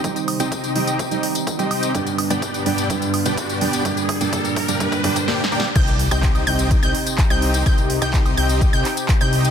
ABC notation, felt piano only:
X:1
M:4/4
L:1/16
Q:1/4=126
K:Cm
V:1 name="Felt piano" clef=bass
[E,G,CE]3 [E,G,CE] z2 [E,G,CE] z2 [E,G,CE]4 [E,G,CG] z2 | [G,,D,G,=B,D]3 [G,,D,G,B,D] z2 [G,,D,G,B,D] z [G,,D,G,B,D]3 [G,,D,G,B,D] z2 [G,,D,G,B,D] z | [G,,D,G,B,D]3 [G,,D,G,B,D] [G,,D,G,B,D]3 [G,,D,G,B,D] [G,,D,G,B,D]2 [G,,D,G,B,D]2 z4 | z16 |
z16 |]